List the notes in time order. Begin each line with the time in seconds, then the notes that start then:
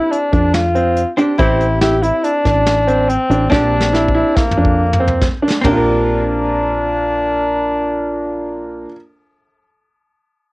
Already playing: C4 D4 E4 G4
0.11 D4, closed hi-hat
0.33 F2 D4, kick, closed hi-hat
0.54 F4, snare, closed hi-hat
0.75 C4, closed hi-hat
0.97 closed hi-hat
1.17 C4 D4 G4, closed hi-hat
1.38 A1 C4 E4 G4, kick, closed hi-hat
1.61 closed hi-hat
1.81 E4 G4, snare, closed hi-hat
2.02 E4, closed hi-hat
2.24 D4, closed hi-hat
2.45 A1 D4, kick, snare, closed hi-hat
2.66 snare, closed hi-hat
2.87 C4, closed hi-hat
3.09 C4, closed hi-hat
3.30 A1 D4, closed hi-hat
3.50 A#1 C4 D4 G4, kick, snare
3.80 snare
3.93 E4, snare
4.08 kick
4.15 E4
4.36 A#3, kick, snare
4.51 mid tom
4.57 F2 D4
4.65 kick
4.93 mid tom
5.00 C4
5.08 floor tom
5.22 kick, snare
5.42 D4
5.50 snare
5.61 A#1 A#3 C4 D4, kick, floor tom, ride bell
5.66 D4 G4
5.72 F4
5.76 A#4